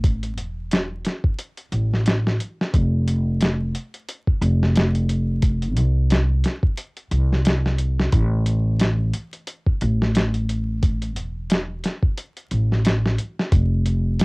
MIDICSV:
0, 0, Header, 1, 3, 480
1, 0, Start_track
1, 0, Key_signature, 0, "minor"
1, 0, Tempo, 674157
1, 26, Time_signature, 4, 2, 24, 8
1, 10144, End_track
2, 0, Start_track
2, 0, Title_t, "Upright bass"
2, 0, Program_c, 0, 32
2, 0, Note_on_c, 0, 33, 88
2, 269, Note_off_c, 0, 33, 0
2, 269, Note_on_c, 0, 28, 89
2, 727, Note_off_c, 0, 28, 0
2, 1225, Note_on_c, 0, 33, 80
2, 1685, Note_off_c, 0, 33, 0
2, 1949, Note_on_c, 0, 29, 92
2, 2647, Note_off_c, 0, 29, 0
2, 3142, Note_on_c, 0, 29, 98
2, 4107, Note_off_c, 0, 29, 0
2, 4107, Note_on_c, 0, 36, 91
2, 4566, Note_off_c, 0, 36, 0
2, 5064, Note_on_c, 0, 36, 88
2, 5765, Note_off_c, 0, 36, 0
2, 5785, Note_on_c, 0, 33, 92
2, 6485, Note_off_c, 0, 33, 0
2, 6991, Note_on_c, 0, 33, 93
2, 7949, Note_off_c, 0, 33, 0
2, 7949, Note_on_c, 0, 28, 91
2, 8407, Note_off_c, 0, 28, 0
2, 8910, Note_on_c, 0, 33, 77
2, 9368, Note_off_c, 0, 33, 0
2, 9625, Note_on_c, 0, 29, 93
2, 10144, Note_off_c, 0, 29, 0
2, 10144, End_track
3, 0, Start_track
3, 0, Title_t, "Drums"
3, 28, Note_on_c, 9, 36, 111
3, 28, Note_on_c, 9, 42, 90
3, 99, Note_off_c, 9, 36, 0
3, 99, Note_off_c, 9, 42, 0
3, 163, Note_on_c, 9, 42, 48
3, 235, Note_off_c, 9, 42, 0
3, 267, Note_on_c, 9, 42, 66
3, 338, Note_off_c, 9, 42, 0
3, 507, Note_on_c, 9, 42, 81
3, 520, Note_on_c, 9, 38, 121
3, 578, Note_off_c, 9, 42, 0
3, 591, Note_off_c, 9, 38, 0
3, 745, Note_on_c, 9, 42, 68
3, 758, Note_on_c, 9, 38, 50
3, 816, Note_off_c, 9, 42, 0
3, 829, Note_off_c, 9, 38, 0
3, 882, Note_on_c, 9, 36, 87
3, 954, Note_off_c, 9, 36, 0
3, 987, Note_on_c, 9, 42, 86
3, 1058, Note_off_c, 9, 42, 0
3, 1121, Note_on_c, 9, 42, 43
3, 1192, Note_off_c, 9, 42, 0
3, 1226, Note_on_c, 9, 42, 61
3, 1297, Note_off_c, 9, 42, 0
3, 1378, Note_on_c, 9, 38, 36
3, 1449, Note_off_c, 9, 38, 0
3, 1466, Note_on_c, 9, 42, 78
3, 1478, Note_on_c, 9, 38, 114
3, 1537, Note_off_c, 9, 42, 0
3, 1550, Note_off_c, 9, 38, 0
3, 1615, Note_on_c, 9, 38, 56
3, 1686, Note_off_c, 9, 38, 0
3, 1710, Note_on_c, 9, 42, 65
3, 1781, Note_off_c, 9, 42, 0
3, 1858, Note_on_c, 9, 38, 58
3, 1929, Note_off_c, 9, 38, 0
3, 1948, Note_on_c, 9, 36, 114
3, 1948, Note_on_c, 9, 42, 91
3, 2019, Note_off_c, 9, 36, 0
3, 2019, Note_off_c, 9, 42, 0
3, 2189, Note_on_c, 9, 42, 73
3, 2261, Note_off_c, 9, 42, 0
3, 2425, Note_on_c, 9, 42, 88
3, 2438, Note_on_c, 9, 38, 108
3, 2496, Note_off_c, 9, 42, 0
3, 2509, Note_off_c, 9, 38, 0
3, 2669, Note_on_c, 9, 42, 71
3, 2740, Note_off_c, 9, 42, 0
3, 2806, Note_on_c, 9, 42, 42
3, 2877, Note_off_c, 9, 42, 0
3, 2909, Note_on_c, 9, 42, 89
3, 2980, Note_off_c, 9, 42, 0
3, 3042, Note_on_c, 9, 36, 91
3, 3114, Note_off_c, 9, 36, 0
3, 3147, Note_on_c, 9, 42, 64
3, 3218, Note_off_c, 9, 42, 0
3, 3296, Note_on_c, 9, 38, 44
3, 3367, Note_off_c, 9, 38, 0
3, 3386, Note_on_c, 9, 42, 88
3, 3398, Note_on_c, 9, 38, 112
3, 3457, Note_off_c, 9, 42, 0
3, 3470, Note_off_c, 9, 38, 0
3, 3524, Note_on_c, 9, 42, 46
3, 3595, Note_off_c, 9, 42, 0
3, 3626, Note_on_c, 9, 42, 69
3, 3697, Note_off_c, 9, 42, 0
3, 3861, Note_on_c, 9, 42, 88
3, 3864, Note_on_c, 9, 36, 109
3, 3932, Note_off_c, 9, 42, 0
3, 3935, Note_off_c, 9, 36, 0
3, 4002, Note_on_c, 9, 42, 45
3, 4074, Note_off_c, 9, 42, 0
3, 4105, Note_on_c, 9, 42, 73
3, 4176, Note_off_c, 9, 42, 0
3, 4345, Note_on_c, 9, 42, 86
3, 4358, Note_on_c, 9, 38, 116
3, 4416, Note_off_c, 9, 42, 0
3, 4429, Note_off_c, 9, 38, 0
3, 4584, Note_on_c, 9, 42, 68
3, 4597, Note_on_c, 9, 38, 50
3, 4655, Note_off_c, 9, 42, 0
3, 4668, Note_off_c, 9, 38, 0
3, 4719, Note_on_c, 9, 36, 92
3, 4790, Note_off_c, 9, 36, 0
3, 4822, Note_on_c, 9, 42, 86
3, 4894, Note_off_c, 9, 42, 0
3, 4960, Note_on_c, 9, 42, 42
3, 5031, Note_off_c, 9, 42, 0
3, 5064, Note_on_c, 9, 42, 61
3, 5136, Note_off_c, 9, 42, 0
3, 5216, Note_on_c, 9, 38, 36
3, 5287, Note_off_c, 9, 38, 0
3, 5304, Note_on_c, 9, 42, 81
3, 5317, Note_on_c, 9, 38, 114
3, 5376, Note_off_c, 9, 42, 0
3, 5388, Note_off_c, 9, 38, 0
3, 5452, Note_on_c, 9, 38, 52
3, 5523, Note_off_c, 9, 38, 0
3, 5542, Note_on_c, 9, 42, 70
3, 5613, Note_off_c, 9, 42, 0
3, 5692, Note_on_c, 9, 38, 59
3, 5764, Note_off_c, 9, 38, 0
3, 5784, Note_on_c, 9, 42, 96
3, 5786, Note_on_c, 9, 36, 114
3, 5855, Note_off_c, 9, 42, 0
3, 5857, Note_off_c, 9, 36, 0
3, 6024, Note_on_c, 9, 42, 72
3, 6095, Note_off_c, 9, 42, 0
3, 6263, Note_on_c, 9, 42, 94
3, 6276, Note_on_c, 9, 38, 109
3, 6334, Note_off_c, 9, 42, 0
3, 6347, Note_off_c, 9, 38, 0
3, 6505, Note_on_c, 9, 42, 69
3, 6576, Note_off_c, 9, 42, 0
3, 6643, Note_on_c, 9, 42, 44
3, 6714, Note_off_c, 9, 42, 0
3, 6744, Note_on_c, 9, 42, 95
3, 6815, Note_off_c, 9, 42, 0
3, 6882, Note_on_c, 9, 36, 92
3, 6953, Note_off_c, 9, 36, 0
3, 6986, Note_on_c, 9, 42, 60
3, 7057, Note_off_c, 9, 42, 0
3, 7134, Note_on_c, 9, 38, 45
3, 7205, Note_off_c, 9, 38, 0
3, 7227, Note_on_c, 9, 42, 82
3, 7240, Note_on_c, 9, 38, 109
3, 7298, Note_off_c, 9, 42, 0
3, 7311, Note_off_c, 9, 38, 0
3, 7363, Note_on_c, 9, 42, 45
3, 7434, Note_off_c, 9, 42, 0
3, 7470, Note_on_c, 9, 42, 66
3, 7542, Note_off_c, 9, 42, 0
3, 7708, Note_on_c, 9, 42, 90
3, 7709, Note_on_c, 9, 36, 110
3, 7779, Note_off_c, 9, 42, 0
3, 7780, Note_off_c, 9, 36, 0
3, 7845, Note_on_c, 9, 42, 49
3, 7916, Note_off_c, 9, 42, 0
3, 7947, Note_on_c, 9, 42, 72
3, 8018, Note_off_c, 9, 42, 0
3, 8186, Note_on_c, 9, 42, 84
3, 8199, Note_on_c, 9, 38, 115
3, 8257, Note_off_c, 9, 42, 0
3, 8270, Note_off_c, 9, 38, 0
3, 8428, Note_on_c, 9, 42, 70
3, 8441, Note_on_c, 9, 38, 52
3, 8499, Note_off_c, 9, 42, 0
3, 8512, Note_off_c, 9, 38, 0
3, 8562, Note_on_c, 9, 36, 93
3, 8634, Note_off_c, 9, 36, 0
3, 8669, Note_on_c, 9, 42, 92
3, 8740, Note_off_c, 9, 42, 0
3, 8806, Note_on_c, 9, 42, 42
3, 8877, Note_off_c, 9, 42, 0
3, 8907, Note_on_c, 9, 42, 58
3, 8979, Note_off_c, 9, 42, 0
3, 9057, Note_on_c, 9, 38, 33
3, 9128, Note_off_c, 9, 38, 0
3, 9147, Note_on_c, 9, 42, 85
3, 9160, Note_on_c, 9, 38, 115
3, 9219, Note_off_c, 9, 42, 0
3, 9231, Note_off_c, 9, 38, 0
3, 9295, Note_on_c, 9, 38, 55
3, 9366, Note_off_c, 9, 38, 0
3, 9386, Note_on_c, 9, 42, 70
3, 9457, Note_off_c, 9, 42, 0
3, 9536, Note_on_c, 9, 38, 56
3, 9607, Note_off_c, 9, 38, 0
3, 9626, Note_on_c, 9, 42, 89
3, 9627, Note_on_c, 9, 36, 116
3, 9697, Note_off_c, 9, 42, 0
3, 9698, Note_off_c, 9, 36, 0
3, 9866, Note_on_c, 9, 42, 68
3, 9938, Note_off_c, 9, 42, 0
3, 10107, Note_on_c, 9, 42, 89
3, 10120, Note_on_c, 9, 38, 113
3, 10144, Note_off_c, 9, 38, 0
3, 10144, Note_off_c, 9, 42, 0
3, 10144, End_track
0, 0, End_of_file